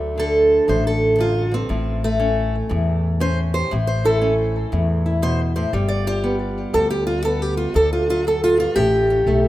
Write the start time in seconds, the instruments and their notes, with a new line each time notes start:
Already playing: upright bass D2, steel-string acoustic guitar D2 D3 F#3 A3
0.18 steel-string acoustic guitar D3 A4
0.68 upright bass A1, steel-string acoustic guitar A2 C5
0.87 steel-string acoustic guitar A4
1.19 steel-string acoustic guitar F#2 F4
1.51 steel-string acoustic guitar G2 C4
1.69 upright bass A1, steel-string acoustic guitar A2
2.04 steel-string acoustic guitar A3
2.20 steel-string acoustic guitar C#4
2.69 upright bass E2, steel-string acoustic guitar A2
3.20 steel-string acoustic guitar C#4 C5
3.54 steel-string acoustic guitar G4 C5
3.71 upright bass A1, steel-string acoustic guitar A2
3.87 steel-string acoustic guitar C5
4.05 steel-string acoustic guitar E4 A4
4.21 steel-string acoustic guitar C#4
4.72 upright bass E2, steel-string acoustic guitar A2
5.06 steel-string acoustic guitar E4
5.22 steel-string acoustic guitar B2 C5
5.56 steel-string acoustic guitar A2 C5
5.73 upright bass G1, steel-string acoustic guitar G3 G4
5.88 steel-string acoustic guitar D5
6.07 steel-string acoustic guitar F4 G4
6.24 steel-string acoustic guitar B3
6.74 steel-string acoustic guitar D2 A4, upright bass D2
6.90 steel-string acoustic guitar G4
7.07 steel-string acoustic guitar F4
7.24 steel-string acoustic guitar B3 A4
7.42 steel-string acoustic guitar G4
7.57 steel-string acoustic guitar F4
7.74 steel-string acoustic guitar D2 A4, upright bass D2
7.93 steel-string acoustic guitar F4
8.10 steel-string acoustic guitar F#3 F4
8.27 steel-string acoustic guitar F#2 A4
8.44 steel-string acoustic guitar F4
8.58 steel-string acoustic guitar G2 F4
8.76 upright bass A1, steel-string acoustic guitar A2 G4
9.10 steel-string acoustic guitar C#4
9.27 upright bass B1, steel-string acoustic guitar A3